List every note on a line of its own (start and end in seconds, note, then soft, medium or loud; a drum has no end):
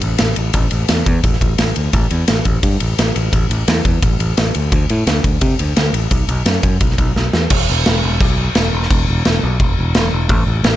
0.01 0.15 A1 medium
0.01 ride medium
0.18 0.32 A1 medium
0.18 snare loud
0.18 ride loud
0.36 0.49 A1 medium
0.36 ride medium
0.53 0.67 A1 loud
0.53 kick loud
0.53 ride medium
0.71 0.84 A1 medium
0.71 ride medium
0.88 1.02 E2 medium
0.88 snare loud
0.88 ride medium
1.06 1.19 E2 medium
1.06 kick medium
1.06 ride medium
1.24 1.36 A1 medium
1.24 kick loud
1.24 ride medium
1.33 snare soft
1.41 1.53 A1 medium
1.41 kick medium
1.41 ride medium
1.58 1.71 A1 medium
1.58 snare loud
1.58 ride medium
1.76 1.89 D2 medium
1.76 ride medium
1.93 2.06 A1 loud
1.93 kick loud
1.93 ride medium
2.10 2.23 E2 medium
2.10 ride medium
2.28 2.41 A1 medium
2.28 snare loud
2.28 ride medium
2.45 2.58 A1 medium
2.45 kick medium
2.45 ride medium
2.63 2.75 G2 medium
2.63 kick loud
2.63 ride loud
2.80 2.93 A1 medium
2.80 ride medium
2.99 3.11 A1 medium
2.99 snare loud
2.99 ride loud
3.16 3.28 A1 medium
3.16 ride medium
3.33 3.45 A1 loud
3.33 kick loud
3.33 ride medium
3.50 3.62 A1 medium
3.50 ride medium
3.68 3.80 E2 loud
3.68 snare loud
3.68 ride medium
3.85 3.97 E2 medium
3.85 kick medium
3.85 ride medium
4.03 4.15 A1 medium
4.03 kick loud
4.03 ride medium
4.19 4.32 A1 medium
4.19 ride medium
4.37 4.50 A1 medium
4.37 snare loud
4.37 ride medium
4.55 4.72 D2 medium
4.55 ride medium
4.72 4.84 D2 loud
4.72 kick loud
4.72 ride medium
4.89 5.02 A2 loud
4.89 ride medium
5.07 5.19 D2 medium
5.07 snare loud
5.07 ride medium
5.24 5.37 D2 medium
5.24 kick medium
5.24 ride medium
5.41 5.54 C3 medium
5.41 kick loud
5.41 ride loud
5.59 5.72 D2 medium
5.59 ride medium
5.76 5.89 D2 medium
5.76 snare loud
5.76 ride loud
5.93 6.06 A1 medium
5.93 ride medium
6.11 6.24 B1 medium
6.11 kick loud
6.11 ride loud
6.29 6.41 B1 medium
6.29 ride medium
6.46 6.58 F#2 medium
6.46 snare loud
6.46 ride loud
6.63 6.76 F#2 medium
6.63 kick medium
6.63 ride medium
6.81 6.93 B1 medium
6.81 kick loud
6.81 ride medium
6.90 snare soft
6.98 7.11 B1 medium
6.98 kick medium
6.98 ride medium
7.16 7.28 B1 medium
7.16 snare medium
7.33 7.46 E2 medium
7.33 snare medium
7.50 7.65 E1 loud
7.50 kick loud
7.50 crash loud
7.50 crash medium
7.70 7.83 E1 medium
7.86 8.01 E1 medium
7.86 snare loud
7.86 crash medium
8.04 8.17 E1 loud
8.21 8.48 B1 loud
8.21 kick loud
8.21 crash medium
8.55 8.69 E1 medium
8.55 snare loud
8.55 crash medium
8.73 8.87 E1 medium
8.82 snare soft
8.91 9.04 E1 loud
8.91 kick loud
8.91 crash medium
9.08 9.22 E1 medium
9.25 9.39 E1 medium
9.25 snare loud
9.25 crash medium
9.43 9.57 B1 loud
9.60 9.74 E1 medium
9.60 kick loud
9.60 crash medium
9.79 9.92 E1 medium
9.95 10.09 E1 medium
9.95 snare loud
9.95 crash medium
10.13 10.29 E1 medium
10.29 10.43 A1 loud
10.29 kick loud
10.29 crash medium
10.47 10.60 A1 loud
10.64 10.76 A1 medium
10.64 snare loud
10.64 crash medium